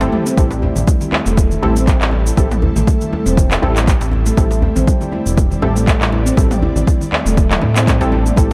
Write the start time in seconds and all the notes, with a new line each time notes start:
Already playing: G3 C4 E4 G4
0.01 G1 C4 E4 G4 A4, djembe slap, shaker
0.12 A3 C4 E4 G4 A4, mid tom, muted conga, djembe tone
0.26 C4, shaker
0.37 A1 G3 C4 E4 G4 A4, kick, muted conga, djembe tone, shaker
0.51 djembe slap, shaker
0.62 E4, muted conga, high conga, djembe tone, djembe bass
0.76 A1, low conga, shaker
0.87 kick, high conga, djembe tone, shaker
1.01 muted conga, low conga, shaker
1.12 clap, high conga, djembe tone
1.26 E1 A3, muted conga, shaker
1.37 A3, kick, djembe tone, shaker
1.51 muted conga, low conga, shaker
1.62 A1 A3 C4 E4 G4 A4, djembe slap, high conga, djembe tone, low conga
1.76 C4, shaker
1.87 G3, kick, clap, djembe tone, shaker
2.01 A1, clap, shaker
2.11 E4, muted conga, djembe tone
2.27 shaker
2.37 A1 C4 E4 G4 A4, kick, muted conga, djembe tone, shaker
2.51 mid tom, djembe slap, shaker
2.62 muted conga, djembe tone, high conga, djembe bass
2.76 A1 A3, low conga, shaker
2.87 A3, kick, high conga, djembe tone, shaker
3.01 muted conga, low conga, shaker
3.13 A3, djembe tone, high conga
3.26 E1 C4, muted conga, shaker
3.37 G3, kick, djembe tone, low conga, shaker
3.51 clap, muted conga, djembe slap, shaker
3.62 A1 C4 E4 G4 A4, djembe slap, djembe tone, djembe bass
3.76 clap, high conga, shaker
3.88 kick, clap, djembe tone, shaker
4.01 A1, djembe slap, shaker
4.12 muted conga, djembe tone
4.26 A3, shaker
4.37 A1 A3 C4 E4 G4 A4 D5, kick, muted conga, djembe tone, shaker
4.51 djembe slap, shaker
4.62 A3, muted conga, djembe tone, high conga, djembe bass
4.76 A1 C4, low conga, shaker
4.87 G3, kick, djembe tone, high conga, shaker
5.01 muted conga, low conga, shaker
5.12 E4, djembe tone, high conga
5.26 E1, muted conga, shaker
5.37 kick, djembe tone, shaker
5.51 muted conga, low conga, shaker
5.62 A1 C4 E4 G4 A4, djembe slap, djembe tone, high conga, low conga
5.76 A3, shaker
5.87 A3, kick, clap, muted conga, djembe tone, shaker
6.01 A1, clap, shaker
6.12 A3, muted conga, djembe tone
6.26 C4, shaker
6.37 A1 G3 C4 E4 G4 A4, kick, muted conga, djembe tone, shaker
6.51 mid tom, djembe slap, shaker
6.62 E4, muted conga, high conga, djembe tone, djembe bass
6.76 A1, low conga, shaker
6.87 kick, djembe tone, high conga, shaker
7.01 muted conga, low conga, shaker
7.12 clap, high conga, djembe tone
7.26 E1 A3, muted conga, shaker
7.37 A3, kick, djembe tone, low conga, shaker
7.51 clap, mid tom, djembe slap, muted conga, shaker
7.62 A2 A3, djembe slap, djembe tone, djembe bass
7.76 C4, clap, high conga, shaker
7.87 G3, kick, clap, muted conga, djembe tone, shaker
8.01 A1 C4 E4 G4 A4, djembe slap, shaker
8.12 C4 E4 G4 A4, high tom, muted conga, high conga, djembe tone
8.26 mid tom, shaker
8.36 A1 A3 C4 E4 G4 A4, kick, muted conga, djembe tone, shaker